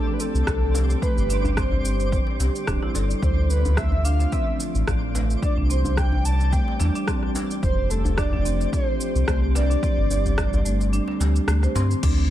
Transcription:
Already playing: ambient pad F3 A3 C4 G4, synth texture C4 D5, soft synth lead A4
0.06 marimba D4, djembe tone
0.14 soft synth lead B4
0.20 marimba C4, soft synth lead A4, cabasa
0.35 analog synth bass C2, cabasa
0.47 analog synth bass C2, kick, cross-stick, cabasa
0.74 djembe slap, djembe tone, cabasa
0.90 cabasa
1.02 ambient pad D3 G3, marimba A3, soft synth lead B4, kick, cabasa
1.17 analog synth bass G1, djembe tone, cabasa
1.29 marimba D4, djembe tone, cabasa
1.45 marimba D4, djembe bass, cabasa
1.57 marimba C4, soft synth lead C5, kick, cross-stick, djembe slap, cabasa
1.72 djembe bass
1.85 cabasa
1.99 djembe slap, cabasa
2.12 kick, cabasa
2.27 djembe slap
2.40 analog synth bass C2, marimba G4, djembe slap, djembe tone, cabasa
2.55 cabasa
2.67 analog synth bass D1, marimba D4, kick, cross-stick, cabasa
2.82 marimba E4, cross-stick, djembe tone
2.94 analog synth bass G1, marimba A4, djembe slap, djembe tone, cabasa
3.10 cabasa
3.22 analog synth bass D2, ambient pad F3 A3 F4, soft synth lead C5, kick, cabasa
3.37 djembe tone
3.50 soft synth lead B4, cabasa
3.65 djembe bass, cabasa
3.77 marimba A3, soft synth lead E5, kick, cross-stick, djembe slap, cabasa
3.92 djembe bass
4.05 marimba D4, soft synth lead F5, cabasa
4.20 marimba D4, djembe slap, cabasa
4.32 marimba C4, soft synth lead E5, kick, cabasa
4.47 djembe tone
4.60 cabasa
4.75 analog synth bass A1, cabasa
4.88 analog synth bass A1, kick, cross-stick, cabasa
5.15 marimba A3, djembe slap, djembe tone, cabasa
5.30 cabasa
5.42 ambient pad E3 G3 C4 G4, marimba D4, soft synth lead D5, kick, cabasa
5.57 analog synth bass C2, marimba D4, djembe tone
5.69 marimba C4, soft synth lead C5, djembe tone, cabasa
5.85 djembe bass, cabasa
5.97 soft synth lead G5, kick, cross-stick, djembe slap, cabasa
6.13 djembe bass
6.25 soft synth lead A5, cabasa
6.40 djembe slap, cabasa
6.52 marimba A3, soft synth lead G5, kick, cabasa
6.68 djembe slap
6.80 analog synth bass E2, marimba D4, djembe slap, djembe tone, cabasa
6.95 marimba D4, cabasa
7.08 marimba C4, kick, cross-stick, cabasa
7.23 cross-stick, djembe tone
7.35 djembe slap, djembe tone, cabasa
7.51 cabasa
7.63 analog synth bass F1, ambient pad F3 A3, soft synth lead C5, kick, cabasa
7.78 djembe tone
7.90 marimba A3, soft synth lead A4, cabasa
8.05 djembe bass, cabasa
8.18 marimba D4, soft synth lead D5, kick, cross-stick, djembe slap, cabasa
8.33 marimba D4, djembe bass
8.45 marimba C4, cabasa
8.60 djembe slap, cabasa
8.73 soft synth lead C5, kick, cabasa
8.88 djembe tone
9.01 cabasa
9.15 analog synth bass C2, cabasa
9.27 analog synth bass C2, marimba A3, soft synth lead C5, kick, cross-stick, cabasa
9.55 marimba D4, soft synth lead D5, djembe slap, djembe tone, cabasa
9.70 marimba D4, cabasa
9.83 ambient pad D3 G3, marimba C4, kick, cabasa
9.98 analog synth bass G1, djembe tone
10.11 djembe tone, cabasa
10.26 djembe bass, cabasa
10.38 kick, cross-stick, djembe slap, cabasa
10.53 djembe bass, cabasa
10.65 marimba A3, cabasa
10.80 djembe slap, cabasa
10.93 marimba D4, cabasa
11.08 marimba D4, djembe slap
11.20 analog synth bass D2, marimba G4, djembe slap, djembe tone, cabasa
11.36 cabasa
11.48 analog synth bass D2, marimba A3, cross-stick, cabasa
11.63 marimba C5, cross-stick, djembe tone, cabasa
11.75 analog synth bass G2, marimba C4, djembe slap, djembe tone, cabasa
11.91 cabasa
12.03 analog synth bass D2, ambient pad D3 F3 A3 F4, marimba D4, kick, closed hi-hat, crash, cabasa
12.18 marimba D4, djembe tone

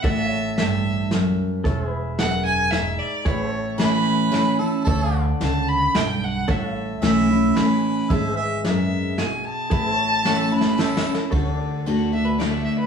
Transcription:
0.03 upright bass A1, steel-string acoustic guitar A2, pedal steel guitar A4 D5 F#5, fiddle E5, kick, closed hi-hat
0.25 pedal steel guitar C#5
0.31 pedal steel guitar E5
0.57 steel-string acoustic guitar G2, fiddle E5, snare, closed hi-hat
1.11 steel-string acoustic guitar F#2, snare, closed hi-hat
1.64 upright bass E1, steel-string acoustic guitar E2, pedal steel guitar A4 C#5 E5, kick, closed hi-hat
1.84 pedal steel guitar G#4
1.91 pedal steel guitar B4
2.19 steel-string acoustic guitar F#2, fiddle F#5, snare, closed hi-hat
2.45 fiddle G#5
2.71 steel-string acoustic guitar G#2, fiddle E5, snare, closed hi-hat
2.99 fiddle D5
3.25 upright bass A1, steel-string acoustic guitar A2, pedal steel guitar G#4 B4 E5, fiddle C#5, kick, closed hi-hat
3.45 pedal steel guitar A4
3.52 pedal steel guitar C#5
3.78 steel-string acoustic guitar E3 A3 C#4 E4, harmonica B4, snare, closed hi-hat
4.31 steel-string acoustic guitar E3 A3 C#4 E4, snare, closed hi-hat
4.59 steel-string acoustic guitar C#4 E4, harmonica A4
4.84 upright bass D2, steel-string acoustic guitar D3, harmonica A4, pedal steel guitar A4 C#5, kick, closed hi-hat
4.89 pedal steel guitar E5
5.08 pedal steel guitar D5
5.14 pedal steel guitar F#5
5.40 upright bass C#2, steel-string acoustic guitar C#3, fiddle A5, snare, closed hi-hat
5.68 fiddle B5
5.95 upright bass B1, steel-string acoustic guitar G2, fiddle G5, snare
6.24 fiddle F#5
6.48 upright bass A1, steel-string acoustic guitar A2, pedal steel guitar A4 C#5 F#5, fiddle E5, kick, closed hi-hat
6.75 pedal steel guitar E5
7.02 upright bass B1, steel-string acoustic guitar E3 A3 C#4 E4, harmonica E5, snare, closed hi-hat
7.30 steel-string acoustic guitar C#4 E4
7.55 upright bass A1, steel-string acoustic guitar E3 A3 C#4 E4, harmonica B4, snare, closed hi-hat
8.10 upright bass G#1, steel-string acoustic guitar G#3, pedal steel guitar A4 C#5 E5, harmonica E5, kick, closed hi-hat
8.31 pedal steel guitar G#4
8.36 pedal steel guitar B4, harmonica E5
8.64 steel-string acoustic guitar F#2, fiddle E5, snare, closed hi-hat
9.18 steel-string acoustic guitar B2, fiddle G#5, snare, closed hi-hat
9.45 fiddle A5
9.70 upright bass A1, steel-string acoustic guitar A2, pedal steel guitar G#4 B4 E5, kick, closed hi-hat
9.90 pedal steel guitar A4
9.97 pedal steel guitar C#5
10.25 steel-string acoustic guitar E3 A3 C#4 E4, harmonica F#4, snare
10.38 harmonica A4
10.52 steel-string acoustic guitar C#4 E4, harmonica B4
10.61 snare
10.78 steel-string acoustic guitar E3 A3 C#4 E4, harmonica A4, snare
10.97 snare
11.05 steel-string acoustic guitar C#4 E4
11.14 snare
11.31 upright bass D2, steel-string acoustic guitar D3, pedal steel guitar A4 C#5 F#5, kick, ride
11.52 pedal steel guitar D5
11.86 steel-string acoustic guitar D3 A3 D4 F#4, ride
12.12 steel-string acoustic guitar D4 F#4, fiddle E5
12.25 fiddle B4
12.38 steel-string acoustic guitar D3 A3 D4 F#4, fiddle D5, snare, ride
12.52 fiddle E5
12.64 fiddle E5
12.79 fiddle B4

